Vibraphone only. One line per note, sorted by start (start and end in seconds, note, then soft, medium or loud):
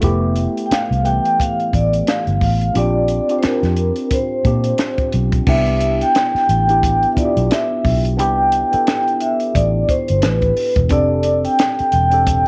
0.66 0.71 G5 medium
0.72 1.07 F5 loud
1.05 1.40 G5 loud
1.40 1.75 F5 loud
1.75 2.09 D5 medium
2.08 2.39 F5 medium
2.43 2.74 F5 medium
2.78 3.35 D5 medium
3.39 3.44 C5 medium
3.46 4.15 A#4 medium
4.13 5.10 C5 medium
5.49 5.98 E5 loud
6.02 6.46 G5 loud
6.50 7.08 G5 loud
7.12 7.18 E5 medium
7.17 7.49 D5 medium
7.51 8.01 E5 loud
8.19 9.24 G5 loud
9.21 9.56 E5 medium
9.55 9.90 D5 medium
9.89 10.24 C5 medium
10.23 10.73 B4 medium
10.91 11.41 D5 loud
11.45 11.90 G5 medium
11.92 12.48 G5 loud